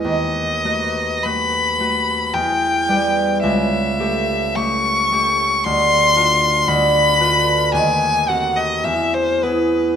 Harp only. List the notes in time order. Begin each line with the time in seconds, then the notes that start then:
Already playing: E4 B4
0.04 D#2
0.64 A3 F#4 B4
1.25 A3 F#4 B4
1.80 A3 F#4 B4
2.33 E2
2.88 G3 G4 B4
3.43 C#2
3.99 A3 G4 A4
4.56 A3 G4 A4
5.11 A3 G4 A4
5.66 D2
6.16 D4 F4 A4
6.68 D2
7.20 D4 F4 B4
7.73 D#2
8.28 C4 F#4 A4
8.84 E2
9.43 B3 E4 G#4